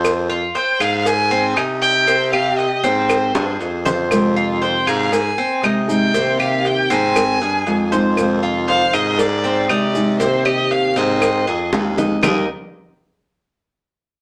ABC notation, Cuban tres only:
X:1
M:4/4
L:1/8
Q:1/4=118
K:Ablyd
V:1 name="Cuban tres"
c F c A2 C E2 | C G2 C2 A2 c- | c F c A2 C E2 | C G2 C2 A2 c- |
c F c A2 C E2 | C G2 C2 A2 e | [EBe] z6 z |]